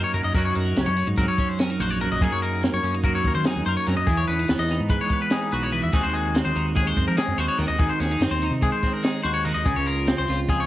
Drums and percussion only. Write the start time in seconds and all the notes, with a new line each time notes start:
0.14 closed hi-hat
0.34 kick, closed hi-hat
0.55 closed hi-hat
0.76 snare, closed hi-hat
0.97 closed hi-hat
1.18 kick, snare, closed hi-hat
1.38 kick, closed hi-hat
1.59 snare, closed hi-hat
1.80 closed hi-hat
2.01 closed hi-hat
2.21 kick, closed hi-hat
2.42 closed hi-hat
2.63 snare, closed hi-hat
2.84 closed hi-hat
3.04 kick, closed hi-hat
3.24 kick, closed hi-hat
3.44 snare, closed hi-hat
3.66 closed hi-hat
3.87 snare, closed hi-hat
4.07 kick, closed hi-hat
4.28 closed hi-hat
4.48 snare, closed hi-hat
4.69 snare, closed hi-hat
4.90 kick, closed hi-hat
5.09 kick, closed hi-hat
5.30 snare, closed hi-hat
5.52 closed hi-hat
5.72 closed hi-hat
5.93 kick, closed hi-hat
6.14 closed hi-hat
6.35 snare, closed hi-hat
6.56 closed hi-hat
6.76 kick, snare, closed hi-hat
6.96 kick, closed hi-hat
7.17 snare, closed hi-hat
7.38 closed hi-hat
7.59 snare, closed hi-hat
7.79 kick, closed hi-hat
8.00 snare, closed hi-hat
8.21 snare, closed hi-hat
8.41 closed hi-hat
8.62 kick, closed hi-hat
8.83 kick, snare, closed hi-hat
9.04 snare, closed hi-hat
9.25 closed hi-hat
9.45 closed hi-hat
9.66 kick, closed hi-hat
9.86 closed hi-hat
10.07 snare, closed hi-hat
10.28 snare, closed hi-hat
10.49 kick, closed hi-hat